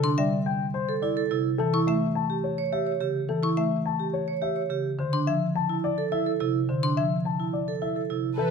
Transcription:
0.03 vibraphone D4, xylophone C6
0.18 marimba G3, grand piano D5, xylophone E5
0.46 grand piano G5
0.74 grand piano C5
0.89 vibraphone A4
1.02 vibraphone E4, grand piano D5
1.17 vibraphone A4
1.31 marimba C3, vibraphone E4
1.58 marimba E3, grand piano A4
1.74 vibraphone E4, xylophone C#6
1.87 marimba A3, grand piano E5, xylophone E5
2.15 grand piano A5
2.30 vibraphone G4
2.44 grand piano C#5
2.58 vibraphone C#5
2.72 vibraphone G4, grand piano E5
2.87 vibraphone C#5
3.00 marimba C#3, vibraphone G4
3.29 marimba E3, grand piano A4
3.43 vibraphone E4, xylophone C#6
3.57 marimba A3, xylophone E5, grand piano E5
3.86 grand piano A5
4.00 vibraphone G4
4.13 grand piano C#5
4.28 vibraphone C#5
4.42 vibraphone G4, grand piano E5
4.56 vibraphone C#5
4.70 marimba C#3, vibraphone G4
4.99 marimba D3, grand piano C5
5.13 vibraphone D4, xylophone C6
5.27 marimba F3, grand piano E5, xylophone E5
5.55 grand piano A5
5.69 vibraphone E4
5.84 grand piano D5
5.98 vibraphone A4
6.12 vibraphone E4, grand piano E5
6.26 vibraphone A4
6.40 marimba C3, vibraphone E4
6.69 marimba D3, grand piano C5
6.83 vibraphone D4, xylophone C6
6.97 marimba F3, grand piano E5, xylophone E5
7.25 grand piano A5
7.40 vibraphone E4
7.53 grand piano D5
7.68 vibraphone A4
7.82 vibraphone E4, grand piano E5
7.96 vibraphone A4
8.10 marimba C3, vibraphone E4
8.38 marimba E3, grand piano A4, violin section A4 B4, alto flute B4

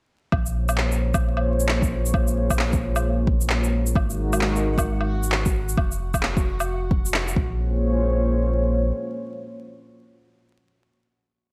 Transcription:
0.31 sub bass A#1, analog synth pad A#3 F4 G#4 C5 C#5, kick, low woodblock
0.46 shaker
0.69 low woodblock, shaker
0.78 clap
0.92 shaker
1.14 kick, low woodblock, shaker
1.37 low woodblock
1.60 shaker
1.69 clap
1.82 kick, shaker
2.06 shaker
2.14 kick, low woodblock
2.28 shaker
2.50 kick, low woodblock, shaker
2.59 clap
2.73 kick, shaker
2.96 low woodblock, shaker
3.27 kick
3.41 shaker
3.50 clap
3.64 shaker
3.87 shaker
3.94 sub bass G#1, analog synth pad G#3 D#4 F#4 A#4, synth texture F#4 F#5, kick, low woodblock
4.10 shaker
4.33 low woodblock, shaker
4.41 clap
4.56 shaker
4.78 kick, low woodblock, shaker
5.01 low woodblock
5.23 shaker
5.32 clap
5.46 kick, shaker
5.69 shaker
5.77 sub bass F1, kick, low woodblock
5.92 shaker
6.14 kick, low woodblock, shaker
6.23 clap
6.37 kick, shaker
6.60 low woodblock, shaker
6.91 kick
7.06 shaker
7.14 clap
7.28 shaker
7.36 sub bass A#1, analog synth pad A#3 F4 G#4 C5 C#5, kick

